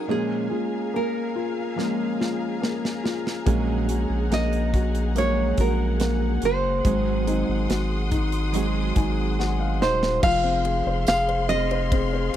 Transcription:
Already playing: felt piano D#4 F#4, string section G#4 G#5, nylon-string guitar A#4
0.08 steel-string acoustic guitar A#2 F3 G#3 C#4 G#4, felt piano A#3, nylon-string guitar G#4, string section F5 A#5
0.50 steel-string acoustic guitar G#3 C#4 G#4, felt piano F4
0.94 felt piano A#3, nylon-string guitar A#4
1.36 felt piano F4
1.76 steel-string acoustic guitar F3 G#3 C#4, felt piano A#3, snare
1.81 steel-string acoustic guitar G#4
2.20 felt piano F4, snare
2.62 felt piano A#3, snare
2.85 snare
3.04 felt piano F4, snare
3.27 snare
3.46 sub bass A#1, steel-string acoustic guitar A#2 F#3 G#3 C#4 G#4, felt piano A#3, string section F#5, kick, closed hi-hat
3.88 steel-string acoustic guitar G#3 C#4 G#4, felt piano F#4, closed hi-hat
4.10 sub bass A#1
4.30 sub bass A#1, felt piano A#3, nylon-string guitar D#5, snare, closed hi-hat
4.53 closed hi-hat
4.73 felt piano F#4, kick, closed hi-hat
4.95 closed hi-hat
5.15 steel-string acoustic guitar F#3 G#3 C#4, felt piano A#3, nylon-string guitar C#5, closed hi-hat
5.19 steel-string acoustic guitar G#4
5.58 sub bass A#1, felt piano F#4, nylon-string guitar A#4, kick, closed hi-hat
6.00 felt piano A#3, snare, closed hi-hat
6.42 sub bass F#1, felt piano F#4, nylon-string guitar C5, closed hi-hat
6.84 sub bass G#1, steel-string acoustic guitar G#2 D#3 F#3 G#3 C4 G#4, felt piano G#3, string section C6 D#6, kick, closed hi-hat
7.27 steel-string acoustic guitar F#3 G#3 C4 G#4, felt piano D#4, closed hi-hat
7.49 sub bass G#1
7.69 sub bass G#1, felt piano F#4, snare, closed hi-hat
8.11 felt piano D#4, kick, closed hi-hat
8.29 nylon-string guitar A#4, closed hi-hat
8.52 steel-string acoustic guitar F#3 G#3 C4, felt piano F#4, closed hi-hat
8.57 steel-string acoustic guitar G#4
8.96 sub bass G#1, felt piano D#4 G#5, kick, closed hi-hat
9.39 felt piano F#4 F#5, snare
9.59 felt piano F5
9.81 sub bass D#1, felt piano D#4 D#5, nylon-string guitar C5, snare
10.03 snare
10.22 sub bass F1, felt piano F3, string section G#4 F5 C6, nylon-string guitar F5, kick, crash
10.44 felt piano C4
10.65 felt piano G#4, ride
10.86 sub bass F1, felt piano C5
11.07 sub bass F1, felt piano G#4, nylon-string guitar F5, snare, ride, tambourine
11.28 felt piano C5, ride
11.49 felt piano C4, nylon-string guitar D#5, ride
11.71 felt piano C5, ride
11.92 felt piano C4, kick, ride
12.13 felt piano C5

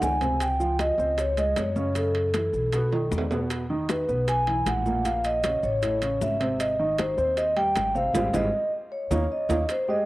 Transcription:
Already playing: grand piano D#3 D#4
0.01 upright bass C#2, vibraphone G#5, high bongo, low bongo, high conga, low timbale, maracas
0.21 grand piano C3 C4, high bongo, high conga, high timbale, maracas
0.40 vibraphone G5, high bongo, high timbale, maracas
0.60 grand piano F3 F4, high conga, maracas
0.79 vibraphone D#5, high bongo, high conga, high timbale, maracas
0.98 upright bass C#2, grand piano C4 C5, high conga, maracas
1.18 vibraphone C#5, high bongo, high conga, high timbale, maracas
1.37 grand piano G#3 G#4, vibraphone D#5, high conga, high timbale, maracas
1.56 upright bass F#2, vibraphone C#5, high bongo, low bongo, high conga, high timbale, low timbale, maracas
1.76 grand piano C#3 C#4, high conga, maracas
1.95 grand piano C#3 C#4, vibraphone A4, high bongo, high conga, high timbale, maracas
2.15 high bongo, high conga, high timbale
2.34 grand piano E3 E4, high bongo, high conga, high timbale, maracas
2.53 upright bass B1, high conga, maracas
2.73 grand piano B2 B3, high bongo, high conga, high timbale, maracas
2.92 grand piano D#3 D#4, high bongo, high conga, high timbale
3.11 upright bass E2, high bongo, low bongo, high conga, maracas
3.18 low timbale
3.31 grand piano B2 B3, high bongo, low timbale, maracas
3.50 high bongo, high timbale, maracas
3.70 grand piano D#3 D#4, high conga
3.89 vibraphone B4, high bongo, high conga, high timbale, maracas
4.09 upright bass B1, grand piano B3 B4, high conga, maracas
4.28 vibraphone G#5, high bongo, high conga, high timbale, maracas
4.47 grand piano E3 E4, high conga, high timbale
4.66 upright bass A#1, vibraphone F#5, high bongo, low bongo, high conga, high timbale, maracas
4.86 grand piano A#2 A#3, high conga, maracas
5.05 grand piano A#2 A#3, vibraphone F5, high bongo, high timbale, maracas
5.24 vibraphone D#5, high bongo, high conga, high timbale, maracas
5.44 grand piano C#3 C#4, high bongo, high conga, high timbale, maracas
5.63 upright bass A1, vibraphone C#5, high conga, maracas
5.82 grand piano A2 A3, high bongo, high conga, high timbale, maracas
6.02 grand piano C#3 C#4, high bongo, high conga, high timbale, maracas
6.21 upright bass G#1, vibraphone E5, high bongo, low bongo, high conga, maracas
6.40 grand piano C3 C4, high bongo, high timbale, maracas
6.59 vibraphone D#5, high bongo, high conga, high timbale, maracas
6.79 grand piano D#3 D#4, high conga
6.98 vibraphone C5, high bongo, high conga, high timbale, maracas
7.17 upright bass D#2, grand piano C4 C5, high conga, maracas
7.37 vibraphone D#5, high bongo, high conga, high timbale, maracas
7.56 grand piano G3 G4, vibraphone G5, high conga, high timbale
7.75 upright bass G#1, high bongo, low bongo, high conga, high timbale, maracas
7.95 grand piano C3 C4, vibraphone F5, maracas
8.14 upright bass G#1, grand piano G3 G#3 C4, low bongo, low conga, high timbale, maracas
8.33 upright bass G#1, grand piano G3 G#3 C4, vibraphone D#5, low bongo, low conga, high timbale, maracas
8.92 vibraphone C#5
9.11 upright bass D#2, grand piano A#3 C#4 D#4, low bongo, low conga, high timbale, maracas
9.32 vibraphone D#5
9.49 upright bass D#2, grand piano A#3 C#4 D#4, low bongo, low conga, high timbale, maracas
9.69 vibraphone C5, high bongo, high conga, high timbale, maracas
9.88 grand piano G#3 G4 G#4, vibraphone D#5, high conga

